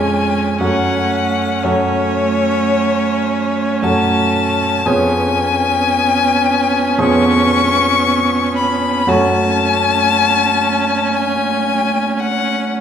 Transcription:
Already playing: F2 G#3 C#4 G#4 C#5 G#5
0.60 F#2 A3 C#4 F#4 C#5 F#5
1.63 F#2 A3 F#4 C#5
3.82 F#2 A3 F#4 C#5 A5
4.86 F2 B3 C#4 G#4 C#5 G#5
6.98 F2 B3 G#4 C#5 C#6
8.57 B5
9.07 F#2 A3 C#4 F#4 C#5 A5
11.15 G#5
12.20 F#5

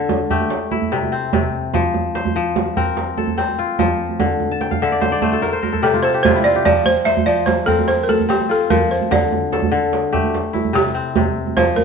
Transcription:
Already playing: D3 C4 F4 A4
0.09 djembe slap, djembe tone
0.30 A3 G4, djembe slap, djembe bass
0.40 djembe tone
0.50 djembe slap
0.71 E4, djembe tone
0.82 djembe bass
0.92 C3, djembe slap
1.03 djembe tone
1.12 C4
1.33 C3, djembe slap, djembe tone, djembe bass
1.43 djembe slap
1.74 F3, djembe slap, djembe bass
1.84 djembe slap
1.94 djembe slap, djembe tone
2.15 C5, djembe slap
2.25 djembe tone, djembe bass
2.36 F3
2.46 djembe slap
2.56 djembe slap, djembe tone
2.76 C4 A#4, djembe slap, djembe bass
2.97 djembe slap
3.18 A4, djembe tone
3.27 djembe bass
3.38 C4, djembe slap
3.48 djembe tone
3.59 F4
3.79 F3, djembe slap, djembe tone, djembe bass
3.89 djembe slap
4.09 djembe tone
4.20 D3, djembe slap, djembe bass
4.40 djembe tone
4.51 A5
4.61 G5, djembe slap
4.71 F5, djembe slap, djembe tone, djembe bass
4.82 D3 E5
4.92 D5
5.01 C5, djembe slap, djembe tone
5.12 D5, djembe slap
5.22 A3 C5, djembe bass
5.32 A4, djembe tone
5.42 A#4, djembe slap
5.53 C5, djembe slap
5.63 A#4, djembe tone
5.72 A4, djembe bass
5.82 C3 G4 A4, djembe slap
5.94 F4, djembe tone
6.03 A4 C5
6.14 G4
6.23 C3 F4 C5, djembe slap, djembe tone, djembe bass
6.35 E4, djembe bass
6.44 F4 D5, djembe slap
6.55 G4, djembe slap
6.65 F3 D5, djembe slap, djembe bass
6.76 djembe slap
6.85 C5, djembe slap, djembe tone
7.05 C5 E5, djembe slap
7.17 djembe tone, djembe bass
7.26 F3 D5
7.37 djembe slap
7.46 C5, djembe slap, djembe tone
7.66 C4 A4 A#4, djembe slap, djembe bass
7.79 djembe tone
7.88 C5, djembe slap
8.03 A#4
8.09 A4, djembe tone
8.20 djembe bass
8.29 C4 G4, djembe slap
8.40 djembe tone
8.49 F4 A4
8.70 F3 A#4, djembe slap, djembe tone, djembe bass
8.91 C5
9.01 djembe tone
9.11 D3 D5, djembe slap, djembe bass
9.22 djembe slap
9.32 djembe slap, djembe tone
9.52 A4, djembe slap
9.62 djembe tone, djembe bass
9.72 D3
9.83 djembe slap
9.93 djembe slap
10.12 A3 G4, djembe slap, djembe bass
10.24 djembe tone
10.34 djembe slap
10.53 E4, djembe tone
10.65 djembe bass
10.73 C3 G4, djembe slap
10.85 djembe tone
10.94 C4
11.16 C3, djembe slap, djembe tone, djembe bass
11.26 djembe slap
11.47 djembe tone
11.57 F3 C5, djembe slap, djembe bass
11.68 djembe slap
11.76 A#4, djembe slap, djembe tone

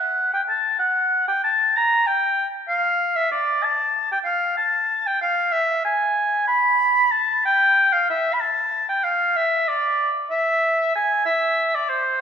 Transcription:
Already playing: F#5
0.34 G5
0.49 A5
0.79 F#5
1.28 G5
1.43 A5
1.76 A#5
2.07 G5
2.68 F5
3.16 E5
3.31 D5
3.63 A5
4.12 G5
4.24 F5
4.57 A5
5.07 G5
5.21 F5
5.52 E5
5.85 G#5
6.47 B5
7.11 A5
7.45 G5
7.92 F5
8.09 E5
8.33 B5
8.40 A5
8.89 G5
9.04 F5
9.36 E5
9.68 D5
10.30 E5
10.95 G#5
11.25 E5
11.75 D5
11.89 C5

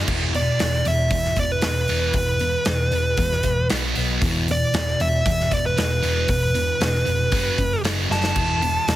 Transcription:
0.08 E1 E2 B2 E3, kick, crash
0.33 E2 B2 D5, open hi-hat
0.59 E1 E2 B2, snare, open hi-hat
0.73 snare
0.85 E1 E2 B2 E5, open hi-hat
1.11 E2 B2, kick, open hi-hat
1.25 snare
1.36 E1 E2 B2 D5, kick, open hi-hat
1.52 B4
1.62 E1 E2 B2, snare, open hi-hat
1.88 E1 E2 B2 E3, open hi-hat
2.13 E1 E2 B2 B4, kick, open hi-hat
2.39 E2 B2, open hi-hat
2.65 E1 E2 B2, snare, open hi-hat
2.92 E1 E2 B2, open hi-hat
3.17 E2 B2, kick, open hi-hat
3.32 snare
3.43 E1 E2 B2, kick, open hi-hat
3.70 B1 B2 F#3 B3, snare, open hi-hat
3.95 B1 B2 F#3 B3, open hi-hat
4.22 E1 E2 B2 E3, kick, open hi-hat
4.48 E2 B2 D5, open hi-hat
4.73 E1 E2 B2, snare, open hi-hat
4.88 snare
5.00 E1 E2 B2 E5, open hi-hat
5.25 E2 B2, kick, open hi-hat
5.40 snare
5.51 E1 E2 B2 D5, kick, open hi-hat
5.66 B4
5.78 E1 E2 B2, snare, open hi-hat
6.03 E1 E2 B2 E3, open hi-hat
6.28 E1 E2 B2 B4, kick, open hi-hat
6.55 E2 B2, open hi-hat
6.80 E1 E2 B2, snare, open hi-hat
6.95 snare
7.05 F1 E2 B2, open hi-hat
7.31 F#1 F#2 C#3 F#3, kick, open hi-hat
7.58 F#1 F#2 C#3, kick, open hi-hat
7.83 F#1 F#2 C#3 F#3, snare, open hi-hat
8.10 F#1 F#2 C#3 F#3 A5, snare
8.24 snare
8.36 E1 E2 B2 E3, kick, crash
8.62 E2 B2, open hi-hat
8.87 E1 E2 B2, snare, open hi-hat

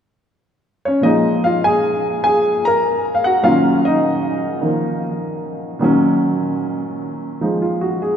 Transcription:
0.85 C#4 C#5
1.01 A#2 F3 G#3 D#4 D#5
1.44 F4 F5
1.64 G#4 G#5
2.24 G#4 G#5
2.65 A#4 A#5
3.15 F5
3.24 F#4 F#5
3.43 A#2 D#3 F#3 C#4 F4 F5
3.85 D#4 D#5
4.61 D#3 F3 A#3
5.79 A#2 D#3 F#3
5.84 C#4
7.41 F3 G#3 D#4
7.62 F4
7.81 F#4
8.02 G#4

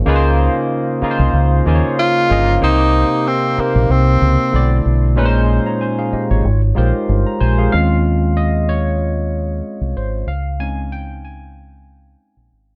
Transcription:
0.06 C#2 C#3 A#3 D#4 F4 G#4 B4
0.16 C5
1.01 C#3 A#3 D#4 F4 G#4 A#4, muted fingered electric bass stroke
1.11 C5
1.19 C2
1.33 C#2
1.65 D#2 C#3 A#3 D#4 F4 G#4 C5
1.75 C#5
1.99 F4
2.29 G1 C#3 A#3 D#4 F4 G#4 D#5
2.60 C2 C3 A#3 D#4 G4 C5
3.28 C4
3.57 C3 A#3 D#4 G4 C5, muted fingered electric bass stroke
3.75 A#1
3.90 C2 C4
4.22 C#2
4.52 B1 D3 A3 D4 E4 D5
4.86 B1
5.16 A#1 A#2 G#3 C#4 D#4 B4
5.26 C5
5.66 C#5 A#5
5.81 C5 G#5
5.99 G#4 F5
6.13 G4 D#5, muted fingered electric bass stroke
6.31 G#1 F4 C#5
6.45 G#1
6.75 A#1 G#3 D#4 F4 G4 A#4 C5
7.09 G1
7.27 A#5
7.40 A#1 C5 G#5
7.58 G#4 F5
7.72 D#2 G#3 C4 C#4 F4 F5
8.37 D#5
8.69 C#5
9.81 C2
9.96 G#1 C5
10.27 C#2 F5
10.59 G#3 C4 C#4 D#4 G#5
10.92 G5
11.25 G#5
12.37 A#1
12.52 G#1

